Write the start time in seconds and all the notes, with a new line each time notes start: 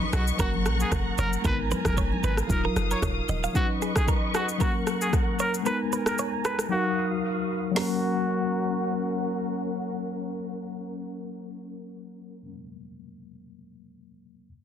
Already playing: F#3 C#4 D#4 B4 D#5 C#6
0.02 high conga
0.13 B1 F#4 G#4, cross-stick, shaker
0.27 shaker
0.37 F#1 F#3 A#3 C#4 F#4 A#4 F#5 A#5, kick, shaker
0.42 A#4
0.54 high conga
0.66 A#1, cross-stick, shaker
0.80 G#4, shaker
0.92 F#1, kick, cross-stick, low conga, shaker
1.18 F#1 A#4 C#5, high conga, low conga, shaker
1.33 shaker
1.42 G#1 G#3 B3 D#4 A#4 B4 G#5, kick, low conga, shaker
1.47 A#4
1.71 B4, high conga, shaker
1.85 F#1 A#4, kick, cross-stick, high conga, shaker
1.97 C#5, kick, shaker
2.12 high conga
2.23 G#1 B4, shaker
2.37 cross-stick, shaker
2.47 D#1 F#3 D#4 F4 A#4 F5 D#6, kick, shaker
2.52 A#4
2.64 A#4, high conga
2.76 F#1, cross-stick, shaker
2.91 A#4 C#5, shaker
3.02 D#1 C#5, kick, cross-stick, low conga, shaker
3.29 D#1 D#5, high conga, low conga, shaker
3.44 F5, shaker
3.53 F#3 C#4 D#4 F#4 B4 D#5 C#6, kick, shaker
3.58 B4
3.82 G#4, shaker
3.96 G#4, kick, cross-stick, shaker
4.08 A#4, kick, shaker
4.34 F#4 G#4, cross-stick, shaker
4.49 shaker
4.58 F#3 A#3 C#4 F#4 A#4 F#5, kick, shaker
4.63 A#4
4.87 cross-stick, shaker
5.01 G#4, shaker
5.13 kick, cross-stick, shaker
5.39 A#4 C#5, shaker
5.54 shaker
5.63 G#3 B3 D#4 A#4 B4 G#5 A#5, shaker
5.68 A#4
5.92 B4, shaker
6.06 A#4, cross-stick, shaker
6.18 C#5, shaker
6.45 B4, cross-stick, shaker
6.59 cross-stick, shaker
6.68 F#3 D#4 F#4 F5 D#6
6.73 A#4
7.71 F#3 A#3
7.76 C#4 F#4 A#4 F#5, snare, open hi-hat
7.81 A#4